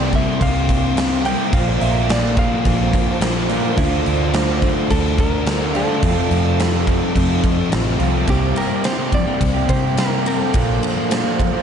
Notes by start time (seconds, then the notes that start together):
Already playing: C2 C3 G3 A#3 C4 E4 G4 A#4 C5 D5 G5 C6
0.13 G3 C4 E5, kick, crash
0.40 C2 C3 G3 C4 F5, kick, crash
0.68 G3 C4, kick, crash
0.96 C3 G3 C4, snare, crash
1.25 C3 G3 A#3 C4 E4 G4 G5, crash
1.52 A#1 A#2 D3 F3 A#3 D4 F5 A5 D6, kick, crash
1.56 F4
1.80 A#1 F3 A#3 E5, crash
2.08 A#2 F3 A#3 D5, snare, crash
2.36 F3 A#3 F5, kick, crash
2.64 A#1 A#2 F3 A#3, kick, crash
2.93 F3 A#3, kick, crash
3.20 A#2 F3 A#3, snare, crash
3.49 A#2 D3 F3 A#3 D4 F4, crash
3.77 D2 D3 A3 D4 F4 D5 E6, kick, crash
4.05 D2 A3 D4, crash
4.33 D3 A3 D4, snare, crash
4.62 A3 D4, kick, crash
4.90 D2 D3 A3 D4 A4, kick, crash
5.18 A3 D4 A#4, kick, crash
5.46 D3 A3 D4, snare, crash
5.73 D3 A3 D4 F4 A4, crash
5.78 A3
6.02 F2 C3 F3 A3 C4 F4 C5 F5, kick, crash
6.30 F2 C3 F3, crash
6.59 F2 C3 F3, snare, crash
6.87 C3 F3, kick, crash
7.15 F2 C3 F3, kick, crash
7.43 C3 F3, kick, crash
7.71 A1 F2 C3 F3, snare, crash
7.99 C2 F2 C3 F3 A3 C4 F4, crash
8.27 C2 C3 G3 A#3 E4 G4 C5 G5 C6, kick, ride
8.31 C4
8.55 G3 A#3 E4 G4 A#4, ride
8.70 G3 C4
8.84 C3 G3 A#3 C4 E4 G4 C5, snare, ride
8.97 A#3 C4 E4 G4
9.01 G3
9.12 D5, muted distorted electric guitar stroke, kick, ride
9.25 A#3 C4 E4 G4
9.30 G3
9.40 C2, muted overdriven electric guitar stroke, kick, ride
9.54 G3 A#3 C4 E4 G4
9.69 C3 G3 C4 C5, kick, ride
9.83 A#3 E4 G4
9.97 C3 G3 A#3 C4 E4 G4 A#4, snare, ride
10.11 G3 A#3 C4 E4 G4
10.25 C3 G3 A#3 C4 E4 G4 A4, ride
10.39 G3 A#3 C4 E4 G4
10.53 A#1 A#2 D3 F3 A#3 D4 F4 A5 D6, kick, ride
10.82 D3 A#3 D4 F4, ride
10.97 F3 A#3
11.10 A#2 D3 F3 A#3 D4 F4, snare, ride
11.24 F3 A#3 D4 F4
11.39 muted distorted electric guitar stroke, kick, ride
11.53 F3 A#3 D4 F4